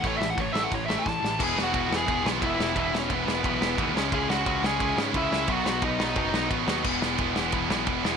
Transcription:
<<
  \new Staff \with { instrumentName = "Lead electric guitar" } { \time 4/4 \key e \major \tempo 4 = 176 \tuplet 3/2 { cis''8 e''8 fis''8 cis''8 e''8 fis''8 cis''8 e''8 a''8~ } a''4 | <gis' gis''>8 <fis' fis''>4 <gis' gis''>4 r8 <e' e''>4 | <e' e''>8 <cis' cis''>8 <b b'>2 r4 | <gis' gis''>8 <fis' fis''>4 <gis' gis''>4 r8 <e' e''>4 |
<fis' fis''>8 <fis' fis''>8 <dis' dis''>2 r4 | r1 | }
  \new Staff \with { instrumentName = "Distorted electric guitar" } { \clef bass \time 4/4 \key e \major <a, e a>8 <a, e>8 <a, e>8 <a, e a>8 <a, e>8 <a, e a>8 <a, e>8 <a, e>8 | <e gis b e'>8 <e gis b e'>8 <e gis b e'>8 <e gis b e'>8 <e gis b e'>8 <e gis b e'>8 <e gis b e'>8 <e gis b e'>8 | <e gis b e'>8 <e gis b e'>8 <e gis b e'>8 <e gis b e'>8 <e gis b e'>8 <e gis b e'>8 <e gis b e'>8 <cis gis cis' e'>8 | <cis gis cis' e'>8 <cis gis cis' e'>8 <cis gis cis' e'>8 <cis gis cis' e'>8 <cis gis cis' e'>8 <cis gis cis' e'>8 <cis gis cis' e'>8 <cis gis cis' e'>8 |
<b, dis fis b dis'>8 <b, dis fis b dis'>8 <b, dis fis b dis'>8 <b, dis fis b dis'>8 <b, dis fis b dis'>8 <b, dis fis b dis'>8 <b, dis fis b dis'>8 <b, dis fis b dis'>8 | <e gis b e'>8 <e gis b e'>8 <e gis b e'>8 <e gis b e'>8 <e gis b e'>8 <e gis b e'>8 <e gis b e'>8 <e gis b e'>8 | }
  \new Staff \with { instrumentName = "Distorted electric guitar" } { \clef bass \time 4/4 \key e \major <a, e a>1 | <e, b, e>8 <e, b, e>8 <e, b, e>8 <e, b, e>8 <e, b, e>8 <e, b, e>8 <e, b, e>8 <e, b, e>8 | <e, b, e>8 <b, e>8 <e, b, e>8 <e, b, e>8 <e, b, e>8 <e, b, e>8 <e, b, e>8 <cis gis cis'>8 | <cis gis cis'>8 <cis gis cis'>8 <cis gis cis'>8 <cis gis cis'>8 <cis gis cis'>8 <cis gis cis'>8 <cis gis cis'>8 <cis gis cis'>8 |
<b, fis b>8 <b, fis b>8 <b, fis b>8 <b, fis b>8 <b, fis b>8 <b, fis b>8 <b, fis b>8 <b, fis b>8 | <e, b, e>8 <e, b, e>8 <e, b, e>8 <e, b, e>8 <e, b, e>8 <e, b, e>8 <e, b, e>8 <e, b, e>8 | }
  \new Staff \with { instrumentName = "Overdriven electric guitar" } { \clef bass \time 4/4 \key e \major <a, e a>8 <a, e>8 <a, e>8 <a, e a>8 <a, e>8 <a, e a>8 <a, e>8 <a, e>8 | <e, b, e>8 <e, b, e>8 <e, b, e>8 <e, b, e>8 <e, b, e>8 <e, b, e>8 <e, b, e>8 <e, b, e>8 | <e, b, e>8 <e, b, e>8 <e, b, e>8 <e, b, e>8 <e, b, e>8 <e, b, e>8 <e, b, e>8 <cis gis cis'>8 | <cis gis cis'>8 <cis gis cis'>8 <cis gis cis'>8 <cis gis cis'>8 <cis gis cis'>8 <cis gis cis'>8 <cis gis cis'>8 <cis gis cis'>8 |
<b, fis b>8 <b, fis b>8 <b, fis b>8 <b, fis b>8 <b, fis b>8 <b, fis b>8 <b, fis b>8 <b, fis b>8 | <e, b, e>8 <e, b, e>8 <e, b, e>8 <e, b, e>8 <e, b, e>8 <e, b, e>8 <e, b, e>8 <e, b, e>8 | }
  \new Staff \with { instrumentName = "Picked electric bass" } { \clef bass \time 4/4 \key e \major a,,8 a,,8 a,,8 a,,8 a,,4 a,,8 a,,8 | e,,8 e,,8 e,,8 e,,8 e,,8 b,,8 e,,8 e,,8 | e,,8 e,,8 e,,8 e,,8 b,,8 e,,8 dis,8 cis,8 | cis,8 cis,8 cis,8 cis,8 cis,8 gis,8 cis,8 cis,8 |
b,,8 b,,8 b,,8 b,,8 fis,,8 b,,8 a,,8 dis,8 | e,,8 e,,8 e,,8 e,,8 e,,8 b,,8 e,,8 e,,8 | }
  \new DrumStaff \with { instrumentName = "Drums" } \drummode { \time 4/4 <cymc bd>8 sn8 <cymc bd>8 sn8 <cymc bd>8 sn8 <bd sn>8 sn8 | <cymc bd>8 sn8 <bd cymr>8 sn8 <bd cymr>8 sn8 <bd cymr>8 sn8 | <bd cymr>8 sn8 <bd cymr>8 sn8 <bd cymr>8 sn8 <bd cymr>8 sn8 | <bd cymr>8 sn8 <bd cymr>8 sn8 <bd cymr>8 sn8 <bd cymr>8 sn8 |
<bd cymr>8 sn8 <bd cymr>8 sn8 <bd cymr>8 sn8 <bd cymr>8 sn8 | <cymc bd>8 sn8 <bd cymr>8 sn8 <bd cymr>8 sn8 <bd cymr>8 sn8 | }
>>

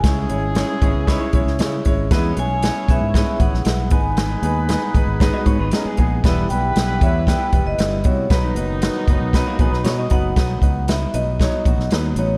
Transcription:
<<
  \new Staff \with { instrumentName = "Vibraphone" } { \time 4/4 \key b \major \tempo 4 = 116 gis''4. r2 r8 | r8 gis''4 e''4 fis''4 gis''8~ | gis''4. r2 r8 | r8 g''4 e''8 g''8. dis''8. cis''8 |
b'2 r4. fis''8~ | fis''4 e''8 dis''4. r8 cis''8 | }
  \new Staff \with { instrumentName = "Clean electric guitar" } { \time 4/4 \key b \major r4. <b gis'>8 <dis' b'>16 <e' cis''>4. r16 | r1 | r2 r16 <fis' dis''>16 cis''16 <dis' b'>16 <cis' ais'>16 <b gis'>8. | r1 |
r2 r16 <ais fis'>16 <b gis'>16 <dis' b'>16 cis''16 <fis' dis''>8. | r1 | }
  \new Staff \with { instrumentName = "Horn section" } { \time 4/4 \key b \major <gis cis' e' gis'>2.~ <gis cis' e' gis'>8 r8 | <cis' e' gis' cis''>2. r8 <b dis' gis' b'>8~ | <b dis' gis' b'>2.~ <b dis' gis' b'>8 r8 | <b e' g' b'>2.~ <b e' g' b'>8 r8 |
<dis fis b dis'>2.~ <dis fis b dis'>8 r8 | r1 | }
  \new Staff \with { instrumentName = "Grand piano" } { \time 4/4 \key b \major <gis cis' e' cis''>8 <gis cis' e' cis''>8 <gis cis' e' cis''>8 <gis cis' e' cis''>8 <gis cis' e' cis''>8 <gis cis' e' cis''>8 <gis cis' e' cis''>8 <gis cis' e' cis''>8 | <gis b e' b'>8 <gis b e' gis'>8 <gis b e' b'>8 <gis b e' b'>8 <gis b e' b'>8 <gis b e' b'>8 <gis b e' b'>8 <gis b dis' b'>8~ | <gis b dis' b'>8 <gis b dis' b'>8 <gis b dis' b'>8 <gis b dis' b'>8 <gis b dis' b'>8 <gis b dis' b'>8 <gis b dis' b'>8 <gis b dis' gis'>8 | <g b e' b'>8 <g b e' b'>8 <g b e' b'>8 <g b e' cis''>8 <g b e' b'>8 <g b e' b'>8 <g b e' b'>8 <g b e' fis'>8 |
<fis b dis' b'>8 <fis b dis' b'>8 <fis b dis' b'>8 <fis b dis' b'>8 <fis b dis' b'>8 <fis b dis' b'>8 <fis b dis' b' dis''>8 <fis b dis' b' b''>8 | <fis b dis' b'>8 <fis b dis' b'>8 <fis b dis' b'>8 <fis b dis' b'>8 <fis b dis' cis''>8 <fis b dis' fis'>8 <fis b dis' b'>8 <fis b dis' b'>8 | }
  \new Staff \with { instrumentName = "Fingered electric bass" } { \clef bass \time 4/4 \key b \major cis,8 gis,,8. r16 gis,,16 cis,8 r16 b,,16 cis,16 cis8 gis,,8 | e,8 b,,8. r16 b,,16 gis,8 r16 gis,,16 ais,,16 b,,8 gis,,8~ | gis,,8 dis,8. r16 gis,,16 gis,,8 r16 gis,16 gis,,16 r8 ais,,8 | e,,8 b,,8 b,,8 e,8. r16 e,,16 fis,,16 g,,8 c,8 |
b,,8 fis,,8. r16 fis,,16 b,,8 r16 ais,,16 b,,16 b,8 fis,,8 | b,,8 cis,4 b,,8. r16 ais,,16 b,,16 dis,8 a,,8 | }
  \new DrumStaff \with { instrumentName = "Drums" } \drummode { \time 4/4 <hh bd sn>8 hh8 <hh sn>8 <hh bd>8 <hh bd sn>8 <hh bd>16 sn16 <hh sn>8 <hh bd>8 | <hh bd sn>8 hh8 <hh sn>8 <hh bd>8 <hh bd sn>8 <hh bd>16 sn16 <hh sn>8 <hh bd>8 | <hh sn>8 hh8 <hh sn>8 <hh bd>8 <hh bd sn>8 <hh bd>8 <hh sn>8 <hh bd>8 | <hh bd sn>8 hh8 <hh sn>8 <hh bd>8 <hh bd sn>8 <hh bd>8 <hh sn>8 <hh bd>8 |
<hh bd sn>8 hh8 <hh sn>8 <hh bd>8 <hh bd sn>8 <hh bd>16 sn16 <hh sn>8 <hh bd>8 | <hh bd sn>8 <hh bd>8 <hh sn>8 hh8 <hh bd sn>8 <hh bd>16 sn16 <hh sn>8 hh8 | }
>>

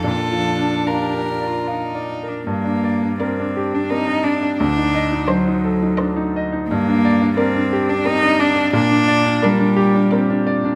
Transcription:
<<
  \new Staff \with { instrumentName = "Violin" } { \time 3/4 \key bes \major \tempo 4 = 86 a'4 bes'4. r8 | \key g \minor r4 d''4 d''4 | r4 ees''4 ees''4 | r4 d''4 d''4 |
r4 d''4 d''4 | }
  \new Staff \with { instrumentName = "Viola" } { \time 3/4 \key bes \major d'2~ d'8 r8 | \key g \minor r4 bes'4 bes'4 | r4 c''4 c''4 | r4 bes'4 bes'4 |
r4 bes'4 bes'4 | }
  \new Staff \with { instrumentName = "Cello" } { \time 3/4 \key bes \major f'4 g'8. f'16 ees'8. d'16 | \key g \minor bes4 c'8. d'16 ees'8 d'8 | d'4 fis4. r8 | bes4 c'8. d'16 ees'8 d'8 |
d'4 g4. r8 | }
  \new Staff \with { instrumentName = "Grand piano" } { \time 3/4 \key bes \major \tuplet 3/2 { bes,8 f8 d'8 f'8 bes'8 d''8 f''8 d''8 bes'8 } | \key g \minor g,16 d'16 d''16 d'16 bes'16 d'16 g'16 d'16 c'16 d'16 d''16 d'16 | d,16 ees'16 ees''16 ees'16 c''16 ees'16 a'16 ees'16 d'16 ees'16 ees''16 ees'16 | g,16 d'16 d''16 d'16 bes'16 d'16 g'16 d'16 c'16 d'16 d''16 d'16 |
bes,16 d'16 d''16 d'16 bes'16 d'16 g'16 d'16 c'16 d'16 d''16 d'16 | }
>>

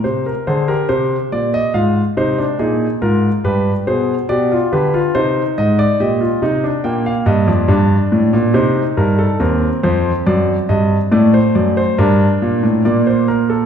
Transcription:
<<
  \new Staff \with { instrumentName = "Grand piano" } { \time 4/4 \key c \minor \tempo 4 = 70 << { r8 c''16 bes'16 c''8 d''16 ees''16 f''8 c''8 aes'8 bes'8 | b'8 c''8 d''8 b'8 c''8 ees''16 d''16 ees''4 | g''16 f''16 ees''16 d''4~ d''16 c''8 bes'16 a'16 bes'8 c''8 | d''8 ees''8 d''16 c''16 d''16 c''16 bes'4 d''16 c''16 bes'16 a'16 | } \\ { c''16 bes'16 aes'16 g'4~ g'16 f'8 ees'16 d'16 ees'8 f'8 | g'8 aes'8 g'16 f'16 g'16 f'16 ees'4 g'16 f'16 ees'16 d'16 | bes4 d'4 ees'4 c'4~ | c'4 a4 d'4 bes4 | } >> }
  \new Staff \with { instrumentName = "Grand piano" } { \clef bass \time 4/4 \key c \minor c8 d8 c8 bes,8 aes,8 c8 bes,8 aes,8 | g,8 b,8 b,8 d8 c8 aes,8 bes,8 c8 | bes,8 g,16 f,16 g,8 a,16 bes,16 c8 g,8 ees,8 f,8 | fis,8 g,8 a,8 fis,8 g,8 bes,16 a,16 bes,4 | }
>>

